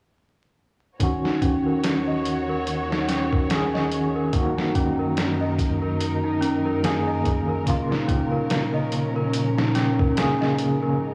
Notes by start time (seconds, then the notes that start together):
1.00 D#2 D#3 C#4 F#4 C#5, kick, closed hi-hat
1.24 D#4, snare
1.42 C#4, kick, closed hi-hat
1.66 A#4
1.84 snare, closed hi-hat
2.07 D#5
2.25 closed hi-hat
2.49 A#4
2.67 closed hi-hat
2.91 D#4, snare
3.08 C#4, snare, closed hi-hat
3.33 A#4, kick
3.50 D#3 C#4 G#4, snare, closed hi-hat
3.74 D#5, snare
3.92 closed hi-hat
4.16 A#4
4.33 F#2 D#3 F#3 A#3 D#4 F#4 A#4, kick, closed hi-hat
4.58 D#4, snare
4.75 C#4, kick, closed hi-hat
4.99 A#4
5.17 snare, closed hi-hat
5.41 D#5
5.59 kick, closed hi-hat
5.82 A#4
6.01 closed hi-hat
6.24 D#4
6.41 C#4, closed hi-hat
6.65 A#4
6.84 D#3 A#3 G#4, snare, closed hi-hat
7.07 D#5
7.25 kick, closed hi-hat
7.48 A#4
7.66 A#2 C#3 F3 A#3 C#4, kick, closed hi-hat
7.70 F4
7.90 D#4, snare
8.08 C#4, kick, closed hi-hat
8.32 A#4
8.50 snare, closed hi-hat
8.74 D#5
8.92 closed hi-hat
9.16 A#4
9.33 closed hi-hat
9.58 D#4, snare
9.75 C#4, snare, closed hi-hat
9.99 A#4, kick
10.17 C#3 A#3 G#4, snare, closed hi-hat
10.41 D#5, snare
10.58 closed hi-hat
10.83 A#4
10.99 G#2 G#3 D#4 A#4